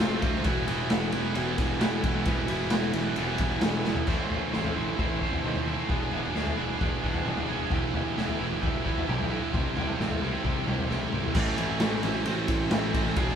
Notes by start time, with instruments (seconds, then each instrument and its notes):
0.00 picked electric bass F1, overdriven electric guitar F3 A3 C4 F4, snare
0.21 picked electric bass D2, overdriven electric guitar A3 C4 F4, kick, ride
0.35 snare
0.44 picked electric bass E1, overdriven electric guitar E3 G3 B3 E4, kick, ride
0.67 picked electric bass E1, overdriven electric guitar G3 B3 E4, ride
0.89 picked electric bass E1, overdriven electric guitar E3 G3 B3 E4, snare, ride
1.12 picked electric bass E1, overdriven electric guitar G3 B3 E4, ride
1.33 picked electric bass E1, overdriven electric guitar E3 G3 B3 E4, ride
1.58 picked electric bass E1, kick, ride
1.80 picked electric bass E1, overdriven electric guitar E3 G3 B3 E4, snare, ride
2.02 picked electric bass E1, overdriven electric guitar G3 B3 E4, kick, ride
2.25 picked electric bass E1, overdriven electric guitar E3 G3 B3 E4, kick, ride
2.48 picked electric bass E1, overdriven electric guitar G3 B3 E4, ride
2.70 picked electric bass E1, overdriven electric guitar E3 G3 B3 E4, snare, ride
2.93 picked electric bass E1, overdriven electric guitar G3 B3 E4, ride
3.16 picked electric bass E1, overdriven electric guitar E3 G3 B3 E4, ride
3.38 picked electric bass E1, kick, ride
3.61 picked electric bass E1, overdriven electric guitar E3 G3 B3 E4, snare, ride
3.84 picked electric bass E1, overdriven electric guitar G3 B3 E4, snare
3.95 floor tom
4.07 picked electric bass A1, overdriven electric guitar A2 E3 A3 C4 E4 C5, kick, floor tom, crash
4.30 overdriven electric guitar A2 E3 A3 C4 E4 C5, floor tom
4.53 picked electric bass A1, overdriven electric guitar A2 E3 A3 C4 E4 C5, snare
4.64 floor tom
4.75 picked electric bass A1, overdriven electric guitar A2 E3 A3 C4 E4 C5
4.98 picked electric bass A1, overdriven electric guitar A2 E3 A3 C4 E4 C5, kick, floor tom
5.21 overdriven electric guitar A2 E3 A3 C4 E4 C5, kick
5.33 floor tom
5.44 picked electric bass D#2, overdriven electric guitar A2 E3 A3 C4 E4 C5, mid tom
5.55 floor tom
5.67 overdriven electric guitar A2 E3 A3 C4 E4 C5
5.89 picked electric bass E1, overdriven electric guitar E3 B3 D4 G#4, kick, floor tom
6.12 picked electric bass E1, overdriven electric guitar E3 B3 D4 G#4, floor tom
6.34 picked electric bass D2, overdriven electric guitar E3 B3 D4 G#4, snare
6.47 floor tom
6.57 picked electric bass E1, overdriven electric guitar E3 B3 D4 G#4
6.80 picked electric bass E1, overdriven electric guitar E3 B3 D4 G#4, kick, floor tom
7.03 picked electric bass E1, overdriven electric guitar E3 B3 D4 G#4, kick
7.14 floor tom
7.25 picked electric bass E1, overdriven electric guitar E3 B3 D4 G#4, mid tom
7.37 floor tom
7.48 picked electric bass E1, overdriven electric guitar E3 B3 D4 G#4
7.70 picked electric bass E1, overdriven electric guitar E3 B3 E4 G4, kick, floor tom
7.94 overdriven electric guitar E3 B3 E4 G4, floor tom
8.17 picked electric bass E1, overdriven electric guitar E3 B3 E4 G4, snare
8.29 floor tom
8.39 picked electric bass E1, overdriven electric guitar E3 B3 E4 G4
8.61 picked electric bass E1, overdriven electric guitar E3 B3 E4 G4, kick, floor tom
8.84 overdriven electric guitar E3 B3 E4 G4, kick
8.98 floor tom
9.07 picked electric bass B1, overdriven electric guitar E3 B3 E4 G4, mid tom
9.21 floor tom
9.30 overdriven electric guitar E3 B3 E4 G4
9.52 picked electric bass C2, overdriven electric guitar C3 G3 C4 E4 G4, kick, floor tom
9.76 picked electric bass C2, overdriven electric guitar C3 G3 C4 E4 G4, floor tom
9.99 picked electric bass A1, overdriven electric guitar C3 G3 C4 E4 G4, snare
10.11 floor tom
10.21 picked electric bass C2, overdriven electric guitar C3 G3 C4 E4 G4
10.44 picked electric bass C2, overdriven electric guitar C3 G3 C4 E4 G4, kick, floor tom
10.67 picked electric bass C2, overdriven electric guitar C3 G3 C4 E4 G4, mid tom
10.79 floor tom
10.90 picked electric bass C2, overdriven electric guitar C3 G3 C4 E4 G4, snare
11.13 picked electric bass C2, overdriven electric guitar C3 G3 C4 E4 G4, mid tom
11.24 floor tom
11.35 picked electric bass A1, overdriven electric guitar A2 E3 A3 C4 E4, kick, crash
11.58 picked electric bass A1, overdriven electric guitar A3 C4 E4, ride
11.80 picked electric bass A1, overdriven electric guitar E3 A3 C4 E4, snare, ride
12.03 picked electric bass A1, overdriven electric guitar A3 C4 E4, ride
12.25 picked electric bass A1, overdriven electric guitar A2 E3 A3 C4 E4, ride
12.48 picked electric bass A1, kick, ride
12.71 picked electric bass A1, overdriven electric guitar E3 A3 C4 E4, snare, ride
12.93 picked electric bass A1, overdriven electric guitar A3 C4 E4, kick, ride
13.06 snare
13.16 picked electric bass E1, overdriven electric guitar E3 B3 D4 G#4, kick, ride
13.29 snare